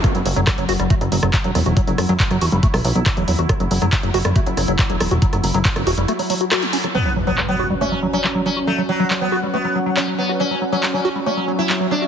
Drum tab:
HH |xxoxxxoxxxoxxxox|xxoxxxoxxooxxxox|xxoxxxoxxxoxxxox|xxoxxxoxxooxxxox|
CP |----x-------x---|----x-------x---|----x-------x---|----x-------x---|
SD |r---r--r---r--r-|--r--r---r--r---|r--r---r--r---r-|-r---r--r---r--r|
BD |o---o---o---o---|o---o---o---o---|o---o---o---o---|o---o-----------|

HH |----------------|----------------|----------------|
CP |----x-------x---|----x-------x---|----x-------x---|
SD |----------------|----------------|----------------|
BD |----------------|----------------|----------------|